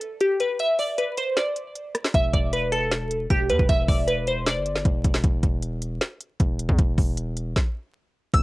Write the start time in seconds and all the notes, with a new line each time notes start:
Already playing: A4
0.01 closed hi-hat
0.21 G4, closed hi-hat
0.40 B4, closed hi-hat
0.59 E5, closed hi-hat
0.79 D5, open hi-hat
0.98 B4, closed hi-hat
1.17 C5, closed hi-hat
1.37 D5, snare, closed hi-hat
1.56 closed hi-hat
1.75 closed hi-hat
1.95 cross-stick, closed hi-hat
2.04 snare
2.14 E1 E5, kick, closed hi-hat
2.33 E1 D5, kick, closed hi-hat
2.53 B4, closed hi-hat
2.72 A4, closed hi-hat
2.91 snare, closed hi-hat
3.11 closed hi-hat
3.30 E1 G4, kick, closed hi-hat
3.50 E2 B4, closed hi-hat
3.59 E1, kick
3.69 E1 E5, kick, closed hi-hat
3.88 E1 D5, kick, open hi-hat
4.07 B4, closed hi-hat
4.27 C5, closed hi-hat
4.46 D5, snare, closed hi-hat
4.56 G1
4.66 closed hi-hat
4.76 snare
4.85 E1, kick, closed hi-hat
5.04 E1, kick, closed hi-hat
5.14 snare
5.24 E1, kick, closed hi-hat
5.43 E1, kick, closed hi-hat
5.63 closed hi-hat
5.82 closed hi-hat
6.01 snare, closed hi-hat
6.21 closed hi-hat
6.40 E1, kick, closed hi-hat
6.59 closed hi-hat
6.69 E2, kick
6.79 E1, kick, closed hi-hat
6.98 E1, kick, open hi-hat
7.17 closed hi-hat
7.37 closed hi-hat
7.56 kick, snare
8.33 E1 D3 G3 B3 E4 E6, kick, closed hi-hat